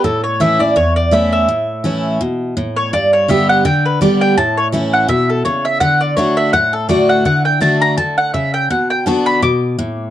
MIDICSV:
0, 0, Header, 1, 3, 480
1, 0, Start_track
1, 0, Key_signature, 2, "major"
1, 0, Tempo, 361011
1, 56, Time_signature, 4, 2, 24, 8
1, 13433, End_track
2, 0, Start_track
2, 0, Title_t, "Mandolin"
2, 0, Program_c, 0, 25
2, 54, Note_on_c, 0, 69, 82
2, 309, Note_off_c, 0, 69, 0
2, 314, Note_on_c, 0, 73, 81
2, 526, Note_off_c, 0, 73, 0
2, 541, Note_on_c, 0, 76, 94
2, 795, Note_off_c, 0, 76, 0
2, 798, Note_on_c, 0, 74, 94
2, 1008, Note_off_c, 0, 74, 0
2, 1016, Note_on_c, 0, 73, 84
2, 1272, Note_off_c, 0, 73, 0
2, 1277, Note_on_c, 0, 74, 86
2, 1488, Note_off_c, 0, 74, 0
2, 1498, Note_on_c, 0, 76, 77
2, 1747, Note_off_c, 0, 76, 0
2, 1763, Note_on_c, 0, 76, 87
2, 2883, Note_off_c, 0, 76, 0
2, 3676, Note_on_c, 0, 73, 99
2, 3886, Note_off_c, 0, 73, 0
2, 3902, Note_on_c, 0, 74, 98
2, 4154, Note_off_c, 0, 74, 0
2, 4163, Note_on_c, 0, 73, 91
2, 4369, Note_off_c, 0, 73, 0
2, 4380, Note_on_c, 0, 76, 88
2, 4633, Note_off_c, 0, 76, 0
2, 4645, Note_on_c, 0, 78, 110
2, 4850, Note_off_c, 0, 78, 0
2, 4858, Note_on_c, 0, 79, 96
2, 5112, Note_off_c, 0, 79, 0
2, 5124, Note_on_c, 0, 71, 86
2, 5329, Note_off_c, 0, 71, 0
2, 5340, Note_on_c, 0, 74, 76
2, 5592, Note_off_c, 0, 74, 0
2, 5601, Note_on_c, 0, 79, 103
2, 5807, Note_off_c, 0, 79, 0
2, 5817, Note_on_c, 0, 81, 106
2, 6071, Note_off_c, 0, 81, 0
2, 6083, Note_on_c, 0, 73, 90
2, 6210, Note_off_c, 0, 73, 0
2, 6561, Note_on_c, 0, 78, 95
2, 6765, Note_off_c, 0, 78, 0
2, 6771, Note_on_c, 0, 76, 89
2, 7027, Note_off_c, 0, 76, 0
2, 7041, Note_on_c, 0, 69, 69
2, 7239, Note_off_c, 0, 69, 0
2, 7244, Note_on_c, 0, 73, 82
2, 7503, Note_off_c, 0, 73, 0
2, 7511, Note_on_c, 0, 76, 92
2, 7711, Note_off_c, 0, 76, 0
2, 7716, Note_on_c, 0, 78, 105
2, 7979, Note_off_c, 0, 78, 0
2, 7985, Note_on_c, 0, 74, 85
2, 8192, Note_off_c, 0, 74, 0
2, 8198, Note_on_c, 0, 73, 82
2, 8460, Note_off_c, 0, 73, 0
2, 8468, Note_on_c, 0, 76, 99
2, 8678, Note_off_c, 0, 76, 0
2, 8684, Note_on_c, 0, 78, 111
2, 8943, Note_off_c, 0, 78, 0
2, 8948, Note_on_c, 0, 69, 80
2, 9157, Note_off_c, 0, 69, 0
2, 9162, Note_on_c, 0, 74, 91
2, 9422, Note_off_c, 0, 74, 0
2, 9432, Note_on_c, 0, 78, 96
2, 9635, Note_off_c, 0, 78, 0
2, 9651, Note_on_c, 0, 78, 97
2, 9902, Note_off_c, 0, 78, 0
2, 9907, Note_on_c, 0, 79, 87
2, 10119, Note_off_c, 0, 79, 0
2, 10124, Note_on_c, 0, 81, 89
2, 10383, Note_off_c, 0, 81, 0
2, 10391, Note_on_c, 0, 82, 111
2, 10598, Note_off_c, 0, 82, 0
2, 10604, Note_on_c, 0, 81, 98
2, 10863, Note_off_c, 0, 81, 0
2, 10872, Note_on_c, 0, 78, 100
2, 11080, Note_off_c, 0, 78, 0
2, 11086, Note_on_c, 0, 76, 81
2, 11345, Note_off_c, 0, 76, 0
2, 11351, Note_on_c, 0, 79, 105
2, 11562, Note_off_c, 0, 79, 0
2, 11574, Note_on_c, 0, 78, 91
2, 11829, Note_off_c, 0, 78, 0
2, 11837, Note_on_c, 0, 79, 95
2, 12045, Note_off_c, 0, 79, 0
2, 12054, Note_on_c, 0, 81, 89
2, 12307, Note_off_c, 0, 81, 0
2, 12313, Note_on_c, 0, 83, 111
2, 12523, Note_off_c, 0, 83, 0
2, 12536, Note_on_c, 0, 86, 101
2, 13333, Note_off_c, 0, 86, 0
2, 13433, End_track
3, 0, Start_track
3, 0, Title_t, "Steel-string acoustic guitar"
3, 0, Program_c, 1, 25
3, 55, Note_on_c, 1, 45, 91
3, 532, Note_on_c, 1, 52, 84
3, 540, Note_on_c, 1, 57, 85
3, 550, Note_on_c, 1, 61, 88
3, 558, Note_on_c, 1, 64, 83
3, 771, Note_off_c, 1, 64, 0
3, 786, Note_on_c, 1, 64, 66
3, 788, Note_off_c, 1, 52, 0
3, 792, Note_off_c, 1, 57, 0
3, 797, Note_off_c, 1, 61, 0
3, 813, Note_on_c, 1, 61, 51
3, 972, Note_off_c, 1, 45, 0
3, 1000, Note_off_c, 1, 64, 0
3, 1008, Note_on_c, 1, 40, 93
3, 1013, Note_off_c, 1, 61, 0
3, 1480, Note_on_c, 1, 52, 87
3, 1492, Note_on_c, 1, 57, 89
3, 1500, Note_on_c, 1, 61, 86
3, 1507, Note_on_c, 1, 64, 102
3, 1929, Note_off_c, 1, 40, 0
3, 1946, Note_off_c, 1, 52, 0
3, 1952, Note_off_c, 1, 57, 0
3, 1956, Note_off_c, 1, 61, 0
3, 1959, Note_off_c, 1, 64, 0
3, 1974, Note_on_c, 1, 45, 85
3, 2445, Note_on_c, 1, 52, 85
3, 2458, Note_on_c, 1, 57, 84
3, 2466, Note_on_c, 1, 61, 85
3, 2471, Note_on_c, 1, 64, 90
3, 2891, Note_off_c, 1, 45, 0
3, 2908, Note_off_c, 1, 52, 0
3, 2915, Note_off_c, 1, 57, 0
3, 2919, Note_off_c, 1, 61, 0
3, 2921, Note_off_c, 1, 64, 0
3, 2934, Note_on_c, 1, 47, 90
3, 3392, Note_off_c, 1, 47, 0
3, 3413, Note_on_c, 1, 45, 86
3, 3872, Note_off_c, 1, 45, 0
3, 3896, Note_on_c, 1, 43, 84
3, 4366, Note_on_c, 1, 50, 88
3, 4375, Note_on_c, 1, 55, 88
3, 4385, Note_on_c, 1, 59, 98
3, 4396, Note_on_c, 1, 67, 95
3, 4811, Note_off_c, 1, 43, 0
3, 4827, Note_off_c, 1, 50, 0
3, 4832, Note_off_c, 1, 55, 0
3, 4837, Note_off_c, 1, 59, 0
3, 4842, Note_off_c, 1, 67, 0
3, 4852, Note_on_c, 1, 50, 101
3, 5313, Note_off_c, 1, 50, 0
3, 5329, Note_on_c, 1, 50, 81
3, 5338, Note_on_c, 1, 55, 98
3, 5347, Note_on_c, 1, 59, 92
3, 5356, Note_on_c, 1, 67, 96
3, 5788, Note_off_c, 1, 50, 0
3, 5793, Note_off_c, 1, 55, 0
3, 5797, Note_off_c, 1, 59, 0
3, 5802, Note_off_c, 1, 67, 0
3, 5818, Note_on_c, 1, 45, 93
3, 6281, Note_on_c, 1, 52, 80
3, 6292, Note_on_c, 1, 57, 89
3, 6299, Note_on_c, 1, 61, 91
3, 6308, Note_on_c, 1, 64, 89
3, 6730, Note_off_c, 1, 45, 0
3, 6744, Note_off_c, 1, 52, 0
3, 6749, Note_off_c, 1, 57, 0
3, 6753, Note_off_c, 1, 61, 0
3, 6757, Note_off_c, 1, 64, 0
3, 6760, Note_on_c, 1, 47, 99
3, 7223, Note_off_c, 1, 47, 0
3, 7251, Note_on_c, 1, 49, 90
3, 7708, Note_off_c, 1, 49, 0
3, 7724, Note_on_c, 1, 50, 96
3, 8184, Note_off_c, 1, 50, 0
3, 8200, Note_on_c, 1, 50, 83
3, 8212, Note_on_c, 1, 57, 85
3, 8218, Note_on_c, 1, 62, 96
3, 8229, Note_on_c, 1, 66, 90
3, 8663, Note_off_c, 1, 50, 0
3, 8669, Note_off_c, 1, 57, 0
3, 8672, Note_off_c, 1, 62, 0
3, 8677, Note_off_c, 1, 66, 0
3, 8690, Note_on_c, 1, 45, 95
3, 9156, Note_on_c, 1, 50, 89
3, 9166, Note_on_c, 1, 57, 88
3, 9175, Note_on_c, 1, 62, 81
3, 9181, Note_on_c, 1, 66, 101
3, 9606, Note_off_c, 1, 45, 0
3, 9621, Note_off_c, 1, 50, 0
3, 9626, Note_off_c, 1, 57, 0
3, 9630, Note_off_c, 1, 62, 0
3, 9634, Note_off_c, 1, 66, 0
3, 9644, Note_on_c, 1, 50, 89
3, 10096, Note_off_c, 1, 50, 0
3, 10112, Note_on_c, 1, 50, 81
3, 10121, Note_on_c, 1, 57, 78
3, 10128, Note_on_c, 1, 62, 94
3, 10138, Note_on_c, 1, 66, 91
3, 10579, Note_off_c, 1, 50, 0
3, 10583, Note_off_c, 1, 57, 0
3, 10587, Note_off_c, 1, 62, 0
3, 10593, Note_off_c, 1, 66, 0
3, 10605, Note_on_c, 1, 50, 92
3, 11066, Note_off_c, 1, 50, 0
3, 11091, Note_on_c, 1, 49, 82
3, 11549, Note_off_c, 1, 49, 0
3, 11573, Note_on_c, 1, 47, 85
3, 12044, Note_on_c, 1, 50, 82
3, 12057, Note_on_c, 1, 59, 87
3, 12065, Note_on_c, 1, 62, 97
3, 12071, Note_on_c, 1, 66, 96
3, 12489, Note_off_c, 1, 47, 0
3, 12506, Note_off_c, 1, 50, 0
3, 12513, Note_off_c, 1, 59, 0
3, 12517, Note_off_c, 1, 62, 0
3, 12520, Note_off_c, 1, 66, 0
3, 12531, Note_on_c, 1, 47, 90
3, 12990, Note_off_c, 1, 47, 0
3, 13011, Note_on_c, 1, 45, 87
3, 13433, Note_off_c, 1, 45, 0
3, 13433, End_track
0, 0, End_of_file